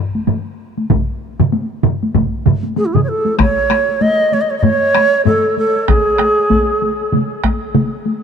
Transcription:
0.15 taiko high
0.27 taiko low-mid, taiko high
0.77 taiko high
0.90 taiko, taiko low-mid, taiko mid, taiko high
1.40 taiko low-mid, taiko mid
1.52 taiko high
1.83 taiko low-mid, taiko mid
2.03 taiko high
2.14 taiko, taiko low-mid, taiko mid, taiko high
2.46 taiko low-mid, taiko mid, taiko high
2.64 taiko high
2.76 G#4, taiko high
2.86 E4
2.94 G#4, taiko low-mid, taiko mid
3.04 C#5
3.09 A4
3.26 taiko high
3.38 C#5, taiko rim, taiko, taiko high
3.70 taiko rim, taiko high
3.89 taiko high
4.01 D#5, taiko high
4.20 taiko high
4.32 C#5, taiko high
4.41 D#5
4.50 C#5, taiko high
4.59 D#5
4.63 C#5, taiko low-mid, taiko high
4.83 taiko high
4.95 taiko rim, taiko high
5.25 A4, taiko low-mid, taiko high
5.44 taiko high
5.57 A4, taiko high
5.76 taiko high
5.88 G#4, taiko rim, taiko, taiko high
6.07 taiko high
6.19 taiko rim, taiko high
6.38 taiko high
6.50 taiko, taiko high
6.69 taiko high
6.82 taiko high
7.01 taiko high
7.12 taiko mid, taiko high
7.32 taiko high
7.44 taiko rim, taiko, taiko high
7.75 taiko mid, taiko high
7.93 taiko high
8.06 taiko high

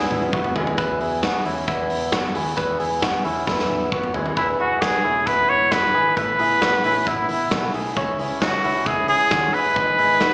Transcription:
Already playing: E2 E3 G#3 B3 E4 F#4 G#4
0.00 snare
0.10 E2, high tom
0.22 high tom
0.32 F#2 G#3 B3 E4 F#4, kick, mid tom
0.44 mid tom
0.55 D#2 E4 F#4 G#4, floor tom
0.67 floor tom
0.77 E2 E3 G#3 B3 E4 F#4 G#4 B4, kick, closed hi-hat
1.00 E2 E4 G#4, open hi-hat
1.22 G#3 B3 E4 F#4, kick, snare, closed hi-hat
1.45 E2 G#3 B3 C#4 E4 F#4, open hi-hat
1.67 E2 E3 G#3 B3 E4 F#4, kick, closed hi-hat
1.90 E2, open hi-hat
2.12 F#2 B3 E4 F#4, kick, snare, closed hi-hat
2.34 D#2 G#3 B3 E4 F#4 G#4, open hi-hat
2.56 E2 E3 G#3 B3 E4 F#4 G#4 B4, kick, closed hi-hat
2.80 E2 E4 G#4, open hi-hat
3.00 G#3 B3 E4 F#4, kick, snare, closed hi-hat
3.23 E2 G#3 B3 C#4 E4 F#4, open hi-hat
3.47 E2 E3 G#3 B3 E4 F#4, kick, snare
3.59 snare
3.70 E2, high tom
3.81 high tom
3.91 F#2 G#3 B3 E4 F#4, kick, mid tom
4.03 mid tom
4.14 D#2 G#3 B3 E4 F#4 G#4, floor tom
4.26 floor tom
4.36 E1 E2 B2 F#3 G#3 B3 E4 G#4 B4, kick, closed hi-hat
4.58 E1 E2 B2 F#3 G#3 B3 E4 F#4 G#4
4.81 E2 B2 F#3 G#3 B3 E4 F#4 G#4, kick, snare, closed hi-hat
5.03 E1 F#3 G#3 B3 C#4 E4
5.26 E1 F#3 G#3 B3 E4 B4, kick, closed hi-hat
5.49 E1 F#3 G#3 B3 E4 C#5
5.72 F#1 B3 F#4 B4, kick, snare, closed hi-hat
5.93 G#1 F#3 G#3 B3 E4 G#4
6.16 A1 A2 E3 A3 B3 E4 B4, kick, closed hi-hat
6.38 A1 A2 E3 A3 B3 E4 G#4, open hi-hat
6.61 A2 E3 A3 B3 E4 F#4, kick, snare, closed hi-hat
6.83 A1 A3 B3 C#4 E4, open hi-hat
7.06 A1 E3 A3 B3 E4, kick, closed hi-hat
7.28 A1 A3 B3 E4, open hi-hat
7.51 B1 B3 F#4, kick, snare, closed hi-hat
7.73 B1 A3 B3 E4 G#4, open hi-hat
7.95 C#2 C#3 E3 G#3 C#4 E4 G#4 C#5, kick, closed hi-hat
8.18 C#2 C#3 E3 G#3 C#4 E4 G#4, open hi-hat
8.40 C#3 E3 G#3 C#4 E4 F#4, kick, snare, closed hi-hat
8.62 C#2 G#3 C#4 E4, open hi-hat
8.86 C#2 E3 G#3 C#4 E4 G#4, kick, closed hi-hat
9.08 C#2 G#3 C#4 E4 G#4, open hi-hat
9.31 D#2 C#4 F#4, kick, snare, closed hi-hat
9.53 F#1 G#3 C#4 E4 G#4 B4, open hi-hat
9.75 G#1 G#2 D#3 G#3 B3 D#4 G#4 B4, kick
9.97 G#1 G#2 D#3 G#3 B3 D#4 E4 G#4, open hi-hat
10.20 G#2 D#3 G#3 B3 D#4 F#4 G#4, kick, snare, closed hi-hat

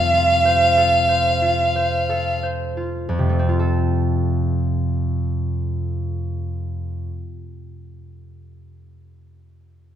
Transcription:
Already playing: F2 C3 A3 C5 F5
0.14 F4
0.45 C5
0.77 A4
1.08 C5
1.42 F4
1.76 C5
2.09 A4
2.43 C5
2.77 F4
3.09 F2
3.19 C3
3.29 A3
3.39 C4
3.49 F4
3.59 A4

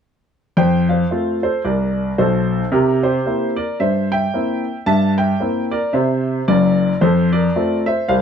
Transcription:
0.57 F2 C5 G5
0.89 C5 F5
1.11 A3 C4 F4
1.43 A4 C5
1.65 C2 A#4 D5
2.18 B1 B2 A4 C5
2.72 C3 G4 A#4
3.03 G4 C5
3.26 A#3 C4 E4
3.56 A#4 D5
3.80 G2 C5 E5
4.12 E5 G5
4.33 A#3 C4 E4
4.86 G2 E5 A5
5.18 E5 G5
5.40 A#3 C4 E4
5.71 A#4 D5
5.93 C3 C5 E5
6.48 F#1 F#2 A#4 D5
7.01 F2 A4 C5
7.33 A#4 D5
7.56 A3 C4 F4
7.86 C5 E5
8.08 C2 C5 F5

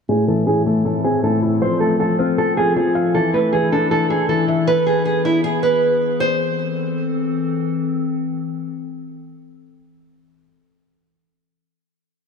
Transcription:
0.09 A2 E3 C4 G#4 A4
0.28 E3 A4
0.47 A2 G#4
0.66 A3 A4
0.85 A2 A4
1.04 C4 G#4
1.24 A2 A4
1.43 E4
1.62 F3 C5
1.80 A3 A4
2.00 F3 A4
2.19 C4 F4
2.38 F3 A4
2.57 F4 G#4
2.76 F3 G#4
2.95 F5
3.14 E3 D4 A4
3.34 A3 B4
3.53 E3 G#4
3.72 D4 A4
3.91 E3 A4
4.10 E4 G#4
4.29 E3 A4
4.48 E5
4.67 B3 G#4 B4
4.86 G#4
5.05 G#4
5.25 E4
5.44 G#4
5.63 B4
6.20 E3 C4 A4 C5

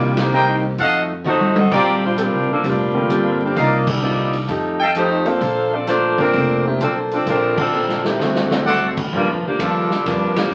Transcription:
Already playing: C2 C3 D#3 G3 A#3 C4 D4 D#4 F4
0.17 D#3 A#3 C4 G4, snare, ride
0.32 C3 G3 A#3 D#4 A#4 C5 D#5 G5
0.78 F2 F3 A3 D#4 F#4 A4 D#5 F5 F#5, kick, open hi-hat
1.24 F3 A3 D#4 F#4 C5, mid tom
1.41 high tom
1.56 C4 F#4 A4 D#5, high tom
1.71 A#1 A#2 G3 C4 D4 F4 G4 A#4 C5 D5 G5, kick, crash
2.05 G3 D4 F4 C5
2.17 A#2 G3 C4 D4 A4, closed hi-hat
2.21 G3 D4 F4 A#4
2.33 C2
2.49 B1 F3 A#3 D4 A4
2.63 F1 A#2 G3 C4 D4, kick, open hi-hat
2.68 G3 D4 F4 A#4
2.94 D3 G3 A#3 C4 F4
3.10 G2 A#2 G3 C4 D4, closed hi-hat
3.44 F3 C4 D4 G4
3.55 C2 C3 A#3 D#4 F4 A#4 D5 D#5 F5, kick, open hi-hat
3.59 D4 D#4 F4
3.87 G3 D4 D#4 A4, kick, crash
4.02 C3 A#3 D#4 F4
4.33 open hi-hat
4.48 F2 F3 A3 D#4 G4, kick, open hi-hat
4.80 A4 D#5 F5 G5
4.95 F3 A3 D#4 G4 C5, closed hi-hat
5.25 F3 A#3 C4 D4 A4 C5 F5, open hi-hat
5.41 A#1 A#3 D4 A4, kick, open hi-hat
5.45 C5
5.74 C4 F4 A4 D5
5.87 A3 A#3 D4 F4 A4 C5, snare, closed hi-hat
6.18 F3 A#3 C4 D4 A#4, kick, open hi-hat
6.33 F1 A#3 D4 A4 C5, kick, open hi-hat
6.66 D#3 A3 C4 G4
6.80 B1 F3 A#3 C4 D4 A4 C5, closed hi-hat
7.11 F3 C4 D4 A4, open hi-hat
7.26 A#1 F3 A#3 C4 D4 A4 A#4 C5, kick, open hi-hat
7.58 F3 C4 D4 A4, kick, crash
7.72 A#3 D4 A4 C5
7.89 snare
8.04 D#3 A3 C4 G4, snare
8.19 D2 D3 A3 C4 F#4, snare
8.35 snare
8.51 F#3 A3 C4 D4 A4, snare
8.66 D3 A3 C4 F#4 A4 C5 D5 F#5, snare
8.97 kick, crash
9.12 G2 F3 G3 A#3 D4 F4, kick
9.26 F2
9.43 D2 F3 A#3 D4 G4
9.59 D#2 G2 F3 G3 A#3 D4 F4 A4, kick, hi-hat pedal, ride
9.90 muted upright bass stroke, snare
10.06 F2 G2 F3 G3 A#3 D4 F4 A#4, kick, snare, ride
10.36 F3 A#3 D4 G4, snare, ride
10.51 G2

